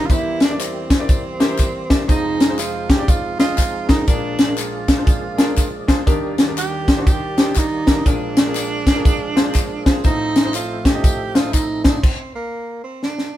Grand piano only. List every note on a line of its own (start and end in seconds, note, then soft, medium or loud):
0.10 2.05 E2 medium
0.10 2.05 E3 medium
0.10 0.38 E4 medium
0.10 0.38 G4 medium
0.10 0.38 A#4 medium
0.10 0.38 C5 medium
0.49 0.81 E4 medium
0.49 0.82 G4 medium
0.49 0.82 A#4 medium
0.49 0.82 D5 medium
0.99 1.22 E4 medium
0.99 1.22 G4 medium
0.99 1.22 A#4 medium
0.99 1.22 D5 medium
1.40 1.65 E4 medium
1.40 1.65 G4 medium
1.40 1.66 A#4 medium
1.40 1.66 C5 medium
1.89 2.01 E4 medium
1.89 2.01 G4 medium
1.89 2.01 A#4 medium
1.89 2.02 D5 medium
2.07 4.04 F1 medium
2.07 4.04 F2 medium
2.07 2.36 D#4 medium
2.07 2.37 F4 medium
2.07 2.37 G#4 medium
2.07 2.37 C5 medium
2.48 2.80 D#4 medium
2.48 2.80 F4 medium
2.48 2.81 G#4 medium
2.48 2.81 C5 medium
2.98 3.21 D#4 medium
2.98 3.21 F4 medium
2.98 3.21 G#4 medium
2.98 3.21 D5 medium
3.38 3.64 D#4 medium
3.38 3.65 F4 medium
3.38 3.65 G#4 medium
3.38 3.65 D#5 medium
3.88 4.00 D#4 medium
3.88 4.00 F4 medium
3.88 4.01 G#4 medium
3.88 4.01 A#4 medium
4.07 6.03 A#1 medium
4.07 6.03 A#2 medium
4.07 4.36 D4 medium
4.07 4.36 F4 medium
4.07 4.36 G#4 medium
4.07 4.36 A#4 medium
4.47 4.79 D4 medium
4.47 4.80 F4 medium
4.47 4.80 G#4 medium
4.47 4.80 A#4 medium
4.97 5.20 D4 medium
4.97 5.20 F4 medium
4.97 5.20 G#4 medium
4.97 5.20 C5 medium
5.38 5.64 D4 medium
5.38 5.64 F4 medium
5.38 5.64 G#4 medium
5.38 5.64 A#4 medium
5.88 6.00 D4 medium
5.88 6.00 F4 medium
5.88 6.00 G#4 medium
5.88 6.00 C5 medium
6.06 8.02 D#2 medium
6.06 8.02 D#3 medium
6.06 6.35 D4 medium
6.06 6.35 D#4 medium
6.06 6.35 G4 medium
6.06 6.35 A#4 medium
6.47 6.79 D4 medium
6.47 6.79 D#4 medium
6.47 6.79 G4 medium
6.47 6.79 A#4 medium
6.97 7.19 D4 medium
6.97 7.19 D#4 medium
6.97 7.20 G4 medium
6.97 7.20 C5 medium
7.37 7.63 D4 medium
7.37 7.63 D#4 medium
7.37 7.63 G4 medium
7.37 7.63 C5 medium
7.86 7.98 D4 medium
7.86 7.99 D#4 medium
7.86 7.99 G4 medium
7.86 7.99 A#4 medium
8.05 10.01 A#1 medium
8.05 10.01 A#2 medium
8.05 8.34 D4 medium
8.05 8.34 F4 medium
8.05 8.34 G#4 medium
8.05 8.34 A#4 medium
8.46 8.78 D4 medium
8.46 8.78 F4 medium
8.46 8.78 G#4 medium
8.46 8.78 A#4 medium
8.96 9.18 D4 medium
8.96 9.18 F4 medium
8.96 9.18 G#4 medium
8.96 9.18 A#4 medium
9.36 9.61 D4 medium
9.36 9.61 F4 medium
9.36 9.62 G#4 medium
9.36 9.62 C5 medium
9.85 9.97 D4 medium
9.85 9.97 F4 medium
9.85 9.97 G#4 medium
9.85 9.98 C5 medium
10.04 11.99 A1 medium
10.04 11.99 A2 medium
10.04 10.32 D#4 medium
10.04 10.33 F4 medium
10.04 10.33 A4 medium
10.04 10.33 C5 medium
10.43 10.76 D#4 medium
10.43 10.76 F4 medium
10.43 10.76 A4 medium
10.43 10.76 C5 medium
10.94 11.16 D#4 medium
10.94 11.16 F4 medium
10.94 11.17 A4 medium
10.94 11.17 D#5 medium
11.34 11.60 D#4 medium
11.34 11.60 F4 medium
11.34 11.61 A4 medium
11.34 11.61 C5 medium
11.84 11.96 D#4 medium
11.84 11.96 F4 medium
11.84 11.96 A4 medium
11.84 11.96 C5 medium